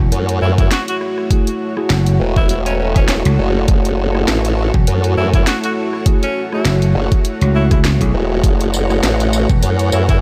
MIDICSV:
0, 0, Header, 1, 8, 480
1, 0, Start_track
1, 0, Key_signature, 3, "minor"
1, 0, Tempo, 594059
1, 1058, Time_signature, 4, 2, 24, 8
1, 8251, End_track
2, 0, Start_track
2, 0, Title_t, "Ambient pad"
2, 0, Program_c, 0, 92
2, 0, Note_on_c, 0, 66, 88
2, 0, Note_on_c, 0, 73, 99
2, 79, Note_on_c, 0, 78, 83
2, 764, Note_on_c, 0, 69, 94
2, 8251, Note_off_c, 0, 66, 0
2, 8251, Note_off_c, 0, 69, 0
2, 8251, Note_off_c, 0, 73, 0
2, 8251, Note_off_c, 0, 78, 0
2, 8251, End_track
3, 0, Start_track
3, 0, Title_t, "Analog synth pad"
3, 0, Program_c, 1, 89
3, 0, Note_on_c, 1, 57, 82
3, 0, Note_on_c, 1, 64, 73
3, 0, Note_on_c, 1, 66, 92
3, 6812, Note_off_c, 1, 66, 0
3, 6816, Note_on_c, 1, 71, 91
3, 8251, Note_off_c, 1, 57, 0
3, 8251, Note_off_c, 1, 64, 0
3, 8251, Note_off_c, 1, 71, 0
3, 8251, End_track
4, 0, Start_track
4, 0, Title_t, "Tine electric piano"
4, 0, Program_c, 2, 4
4, 1055, Note_on_c, 2, 57, 85
4, 1055, Note_on_c, 2, 64, 75
4, 1056, Note_on_c, 2, 66, 77
4, 1056, Note_on_c, 2, 68, 94
4, 1195, Note_off_c, 2, 57, 0
4, 1195, Note_off_c, 2, 64, 0
4, 1196, Note_off_c, 2, 66, 0
4, 1196, Note_off_c, 2, 68, 0
4, 1430, Note_on_c, 2, 64, 73
4, 1432, Note_on_c, 2, 57, 81
4, 1432, Note_on_c, 2, 66, 72
4, 1433, Note_on_c, 2, 68, 86
4, 1542, Note_off_c, 2, 57, 0
4, 1542, Note_off_c, 2, 64, 0
4, 1543, Note_off_c, 2, 66, 0
4, 1543, Note_off_c, 2, 68, 0
4, 2977, Note_on_c, 2, 64, 71
4, 2978, Note_on_c, 2, 57, 78
4, 2978, Note_on_c, 2, 66, 71
4, 2978, Note_on_c, 2, 68, 86
4, 3181, Note_off_c, 2, 64, 0
4, 3182, Note_off_c, 2, 57, 0
4, 3182, Note_off_c, 2, 66, 0
4, 3182, Note_off_c, 2, 68, 0
4, 3354, Note_on_c, 2, 57, 81
4, 3354, Note_on_c, 2, 66, 70
4, 3354, Note_on_c, 2, 68, 86
4, 3355, Note_on_c, 2, 64, 72
4, 3463, Note_off_c, 2, 57, 0
4, 3463, Note_off_c, 2, 66, 0
4, 3463, Note_off_c, 2, 68, 0
4, 3464, Note_off_c, 2, 64, 0
4, 4897, Note_on_c, 2, 57, 85
4, 4898, Note_on_c, 2, 64, 77
4, 4898, Note_on_c, 2, 68, 91
4, 4899, Note_on_c, 2, 66, 79
4, 5036, Note_off_c, 2, 57, 0
4, 5037, Note_off_c, 2, 64, 0
4, 5037, Note_off_c, 2, 66, 0
4, 5037, Note_off_c, 2, 68, 0
4, 5274, Note_on_c, 2, 57, 78
4, 5274, Note_on_c, 2, 64, 70
4, 5274, Note_on_c, 2, 66, 73
4, 5274, Note_on_c, 2, 68, 84
4, 5383, Note_off_c, 2, 57, 0
4, 5383, Note_off_c, 2, 64, 0
4, 5383, Note_off_c, 2, 66, 0
4, 5384, Note_off_c, 2, 68, 0
4, 6232, Note_on_c, 2, 68, 84
4, 6233, Note_on_c, 2, 64, 67
4, 6233, Note_on_c, 2, 66, 68
4, 6234, Note_on_c, 2, 57, 73
4, 6342, Note_off_c, 2, 68, 0
4, 6343, Note_off_c, 2, 57, 0
4, 6343, Note_off_c, 2, 64, 0
4, 6343, Note_off_c, 2, 66, 0
4, 6472, Note_on_c, 2, 64, 89
4, 6472, Note_on_c, 2, 68, 106
4, 6473, Note_on_c, 2, 57, 99
4, 6474, Note_on_c, 2, 66, 90
4, 6793, Note_off_c, 2, 57, 0
4, 6793, Note_off_c, 2, 64, 0
4, 6793, Note_off_c, 2, 66, 0
4, 6793, Note_off_c, 2, 68, 0
4, 6815, Note_on_c, 2, 66, 69
4, 6816, Note_on_c, 2, 57, 76
4, 6816, Note_on_c, 2, 64, 70
4, 6817, Note_on_c, 2, 68, 86
4, 7021, Note_off_c, 2, 57, 0
4, 7021, Note_off_c, 2, 64, 0
4, 7021, Note_off_c, 2, 66, 0
4, 7022, Note_off_c, 2, 68, 0
4, 7192, Note_on_c, 2, 57, 79
4, 7192, Note_on_c, 2, 64, 71
4, 7192, Note_on_c, 2, 68, 85
4, 7193, Note_on_c, 2, 66, 72
4, 7303, Note_off_c, 2, 57, 0
4, 7303, Note_off_c, 2, 64, 0
4, 7303, Note_off_c, 2, 66, 0
4, 7303, Note_off_c, 2, 68, 0
4, 8251, End_track
5, 0, Start_track
5, 0, Title_t, "Tenor saxophone"
5, 0, Program_c, 3, 66
5, 338, Note_on_c, 3, 64, 90
5, 425, Note_off_c, 3, 64, 0
5, 477, Note_on_c, 3, 64, 80
5, 542, Note_off_c, 3, 64, 0
5, 583, Note_on_c, 3, 66, 88
5, 667, Note_off_c, 3, 66, 0
5, 718, Note_on_c, 3, 66, 80
5, 783, Note_off_c, 3, 66, 0
5, 1912, Note_on_c, 3, 64, 95
5, 1980, Note_off_c, 3, 64, 0
5, 2015, Note_on_c, 3, 64, 77
5, 2103, Note_off_c, 3, 64, 0
5, 2150, Note_on_c, 3, 61, 91
5, 2219, Note_off_c, 3, 61, 0
5, 2255, Note_on_c, 3, 61, 76
5, 2343, Note_off_c, 3, 61, 0
5, 2395, Note_on_c, 3, 61, 92
5, 2461, Note_off_c, 3, 61, 0
5, 2500, Note_on_c, 3, 61, 77
5, 2585, Note_off_c, 3, 61, 0
5, 4180, Note_on_c, 3, 64, 92
5, 4265, Note_off_c, 3, 64, 0
5, 4316, Note_on_c, 3, 64, 79
5, 4382, Note_off_c, 3, 64, 0
5, 4418, Note_on_c, 3, 66, 91
5, 4505, Note_off_c, 3, 66, 0
5, 4559, Note_on_c, 3, 66, 81
5, 4623, Note_off_c, 3, 66, 0
5, 5035, Note_on_c, 3, 61, 96
5, 5205, Note_off_c, 3, 61, 0
5, 5282, Note_on_c, 3, 64, 95
5, 5448, Note_off_c, 3, 64, 0
5, 6102, Note_on_c, 3, 64, 91
5, 6186, Note_off_c, 3, 64, 0
5, 6236, Note_on_c, 3, 64, 80
5, 6302, Note_off_c, 3, 64, 0
5, 8021, Note_on_c, 3, 64, 88
5, 8106, Note_off_c, 3, 64, 0
5, 8155, Note_on_c, 3, 64, 79
5, 8221, Note_off_c, 3, 64, 0
5, 8251, End_track
6, 0, Start_track
6, 0, Title_t, "Wobble bass"
6, 0, Program_c, 4, 39
6, 97, Note_on_c, 4, 42, 96
6, 321, Note_off_c, 4, 42, 0
6, 336, Note_on_c, 4, 42, 99
6, 560, Note_off_c, 4, 42, 0
6, 1777, Note_on_c, 4, 28, 101
6, 2481, Note_off_c, 4, 28, 0
6, 2496, Note_on_c, 4, 28, 98
6, 2610, Note_off_c, 4, 28, 0
6, 2739, Note_on_c, 4, 30, 98
6, 2962, Note_off_c, 4, 30, 0
6, 2978, Note_on_c, 4, 30, 96
6, 3441, Note_off_c, 4, 30, 0
6, 3460, Note_on_c, 4, 33, 98
6, 3813, Note_off_c, 4, 33, 0
6, 3939, Note_on_c, 4, 42, 94
6, 4162, Note_off_c, 4, 42, 0
6, 4179, Note_on_c, 4, 42, 95
6, 4402, Note_off_c, 4, 42, 0
6, 5616, Note_on_c, 4, 30, 98
6, 5731, Note_off_c, 4, 30, 0
6, 6580, Note_on_c, 4, 28, 99
6, 6802, Note_off_c, 4, 28, 0
6, 6817, Note_on_c, 4, 30, 96
6, 7281, Note_off_c, 4, 30, 0
6, 7298, Note_on_c, 4, 33, 100
6, 7651, Note_off_c, 4, 33, 0
6, 7780, Note_on_c, 4, 42, 95
6, 8003, Note_off_c, 4, 42, 0
6, 8021, Note_on_c, 4, 42, 98
6, 8243, Note_off_c, 4, 42, 0
6, 8251, End_track
7, 0, Start_track
7, 0, Title_t, "Slap bass"
7, 0, Program_c, 5, 36
7, 0, Note_on_c, 5, 28, 95
7, 81, Note_off_c, 5, 28, 0
7, 1536, Note_on_c, 5, 30, 97
7, 1761, Note_off_c, 5, 30, 0
7, 2631, Note_on_c, 5, 37, 98
7, 2720, Note_off_c, 5, 37, 0
7, 3830, Note_on_c, 5, 28, 96
7, 3920, Note_off_c, 5, 28, 0
7, 5375, Note_on_c, 5, 30, 97
7, 5600, Note_off_c, 5, 30, 0
7, 5992, Note_on_c, 5, 37, 94
7, 6451, Note_off_c, 5, 37, 0
7, 6471, Note_on_c, 5, 35, 96
7, 6560, Note_off_c, 5, 35, 0
7, 7672, Note_on_c, 5, 28, 95
7, 7761, Note_off_c, 5, 28, 0
7, 8251, End_track
8, 0, Start_track
8, 0, Title_t, "Drums"
8, 97, Note_on_c, 9, 42, 80
8, 178, Note_off_c, 9, 42, 0
8, 233, Note_on_c, 9, 42, 57
8, 313, Note_off_c, 9, 42, 0
8, 471, Note_on_c, 9, 36, 112
8, 472, Note_on_c, 9, 42, 38
8, 552, Note_off_c, 9, 36, 0
8, 552, Note_off_c, 9, 42, 0
8, 576, Note_on_c, 9, 38, 118
8, 576, Note_on_c, 9, 42, 84
8, 657, Note_off_c, 9, 38, 0
8, 657, Note_off_c, 9, 42, 0
8, 712, Note_on_c, 9, 42, 54
8, 793, Note_off_c, 9, 42, 0
8, 816, Note_on_c, 9, 37, 42
8, 897, Note_off_c, 9, 37, 0
8, 951, Note_on_c, 9, 37, 43
8, 1032, Note_off_c, 9, 37, 0
8, 1055, Note_on_c, 9, 36, 123
8, 1056, Note_on_c, 9, 42, 84
8, 1136, Note_off_c, 9, 36, 0
8, 1137, Note_off_c, 9, 42, 0
8, 1189, Note_on_c, 9, 42, 57
8, 1270, Note_off_c, 9, 42, 0
8, 1429, Note_on_c, 9, 37, 54
8, 1510, Note_off_c, 9, 37, 0
8, 1534, Note_on_c, 9, 38, 122
8, 1534, Note_on_c, 9, 42, 83
8, 1615, Note_off_c, 9, 38, 0
8, 1615, Note_off_c, 9, 42, 0
8, 1668, Note_on_c, 9, 42, 54
8, 1749, Note_off_c, 9, 42, 0
8, 1910, Note_on_c, 9, 36, 112
8, 1991, Note_off_c, 9, 36, 0
8, 2013, Note_on_c, 9, 42, 79
8, 2094, Note_off_c, 9, 42, 0
8, 2150, Note_on_c, 9, 42, 57
8, 2231, Note_off_c, 9, 42, 0
8, 2390, Note_on_c, 9, 37, 54
8, 2390, Note_on_c, 9, 42, 41
8, 2391, Note_on_c, 9, 36, 112
8, 2470, Note_off_c, 9, 37, 0
8, 2470, Note_off_c, 9, 42, 0
8, 2472, Note_off_c, 9, 36, 0
8, 2492, Note_on_c, 9, 38, 125
8, 2492, Note_on_c, 9, 42, 86
8, 2573, Note_off_c, 9, 38, 0
8, 2573, Note_off_c, 9, 42, 0
8, 2629, Note_on_c, 9, 42, 54
8, 2710, Note_off_c, 9, 42, 0
8, 2974, Note_on_c, 9, 42, 81
8, 2977, Note_on_c, 9, 36, 125
8, 3055, Note_off_c, 9, 42, 0
8, 3058, Note_off_c, 9, 36, 0
8, 3111, Note_on_c, 9, 42, 55
8, 3192, Note_off_c, 9, 42, 0
8, 3352, Note_on_c, 9, 37, 53
8, 3433, Note_off_c, 9, 37, 0
8, 3457, Note_on_c, 9, 38, 123
8, 3457, Note_on_c, 9, 42, 83
8, 3538, Note_off_c, 9, 38, 0
8, 3538, Note_off_c, 9, 42, 0
8, 3593, Note_on_c, 9, 42, 55
8, 3674, Note_off_c, 9, 42, 0
8, 3831, Note_on_c, 9, 36, 113
8, 3912, Note_off_c, 9, 36, 0
8, 3937, Note_on_c, 9, 42, 82
8, 4017, Note_off_c, 9, 42, 0
8, 4072, Note_on_c, 9, 42, 55
8, 4153, Note_off_c, 9, 42, 0
8, 4311, Note_on_c, 9, 36, 114
8, 4312, Note_on_c, 9, 42, 39
8, 4392, Note_off_c, 9, 36, 0
8, 4393, Note_off_c, 9, 42, 0
8, 4419, Note_on_c, 9, 38, 125
8, 4419, Note_on_c, 9, 42, 83
8, 4500, Note_off_c, 9, 38, 0
8, 4500, Note_off_c, 9, 42, 0
8, 4553, Note_on_c, 9, 42, 52
8, 4634, Note_off_c, 9, 42, 0
8, 4792, Note_on_c, 9, 37, 40
8, 4873, Note_off_c, 9, 37, 0
8, 4895, Note_on_c, 9, 42, 77
8, 4897, Note_on_c, 9, 36, 123
8, 4976, Note_off_c, 9, 42, 0
8, 4977, Note_off_c, 9, 36, 0
8, 5032, Note_on_c, 9, 42, 52
8, 5112, Note_off_c, 9, 42, 0
8, 5272, Note_on_c, 9, 37, 52
8, 5353, Note_off_c, 9, 37, 0
8, 5375, Note_on_c, 9, 38, 123
8, 5375, Note_on_c, 9, 42, 81
8, 5456, Note_off_c, 9, 38, 0
8, 5456, Note_off_c, 9, 42, 0
8, 5511, Note_on_c, 9, 42, 51
8, 5592, Note_off_c, 9, 42, 0
8, 5751, Note_on_c, 9, 36, 113
8, 5751, Note_on_c, 9, 42, 37
8, 5832, Note_off_c, 9, 36, 0
8, 5832, Note_off_c, 9, 42, 0
8, 5856, Note_on_c, 9, 42, 75
8, 5937, Note_off_c, 9, 42, 0
8, 5991, Note_on_c, 9, 42, 55
8, 6072, Note_off_c, 9, 42, 0
8, 6231, Note_on_c, 9, 36, 117
8, 6232, Note_on_c, 9, 37, 51
8, 6232, Note_on_c, 9, 42, 37
8, 6311, Note_off_c, 9, 36, 0
8, 6313, Note_off_c, 9, 37, 0
8, 6313, Note_off_c, 9, 42, 0
8, 6338, Note_on_c, 9, 38, 127
8, 6338, Note_on_c, 9, 42, 82
8, 6419, Note_off_c, 9, 38, 0
8, 6419, Note_off_c, 9, 42, 0
8, 6471, Note_on_c, 9, 36, 63
8, 6473, Note_on_c, 9, 42, 51
8, 6551, Note_off_c, 9, 36, 0
8, 6554, Note_off_c, 9, 42, 0
8, 6816, Note_on_c, 9, 36, 124
8, 6819, Note_on_c, 9, 42, 76
8, 6819, Note_on_c, 9, 54, 42
8, 6897, Note_off_c, 9, 36, 0
8, 6899, Note_off_c, 9, 42, 0
8, 6899, Note_off_c, 9, 54, 0
8, 6953, Note_on_c, 9, 42, 53
8, 6953, Note_on_c, 9, 54, 21
8, 7034, Note_off_c, 9, 42, 0
8, 7034, Note_off_c, 9, 54, 0
8, 7059, Note_on_c, 9, 54, 74
8, 7139, Note_off_c, 9, 54, 0
8, 7194, Note_on_c, 9, 37, 53
8, 7194, Note_on_c, 9, 54, 33
8, 7275, Note_off_c, 9, 37, 0
8, 7275, Note_off_c, 9, 54, 0
8, 7299, Note_on_c, 9, 38, 119
8, 7299, Note_on_c, 9, 42, 77
8, 7299, Note_on_c, 9, 54, 43
8, 7380, Note_off_c, 9, 38, 0
8, 7380, Note_off_c, 9, 42, 0
8, 7380, Note_off_c, 9, 54, 0
8, 7435, Note_on_c, 9, 42, 50
8, 7435, Note_on_c, 9, 54, 21
8, 7516, Note_off_c, 9, 42, 0
8, 7516, Note_off_c, 9, 54, 0
8, 7539, Note_on_c, 9, 54, 74
8, 7620, Note_off_c, 9, 54, 0
8, 7672, Note_on_c, 9, 36, 106
8, 7673, Note_on_c, 9, 54, 33
8, 7753, Note_off_c, 9, 36, 0
8, 7754, Note_off_c, 9, 54, 0
8, 7777, Note_on_c, 9, 42, 76
8, 7777, Note_on_c, 9, 54, 41
8, 7858, Note_off_c, 9, 42, 0
8, 7858, Note_off_c, 9, 54, 0
8, 7913, Note_on_c, 9, 42, 54
8, 7913, Note_on_c, 9, 54, 22
8, 7994, Note_off_c, 9, 42, 0
8, 7994, Note_off_c, 9, 54, 0
8, 8018, Note_on_c, 9, 54, 73
8, 8099, Note_off_c, 9, 54, 0
8, 8151, Note_on_c, 9, 42, 36
8, 8151, Note_on_c, 9, 54, 33
8, 8153, Note_on_c, 9, 36, 110
8, 8232, Note_off_c, 9, 42, 0
8, 8232, Note_off_c, 9, 54, 0
8, 8233, Note_off_c, 9, 36, 0
8, 8251, End_track
0, 0, End_of_file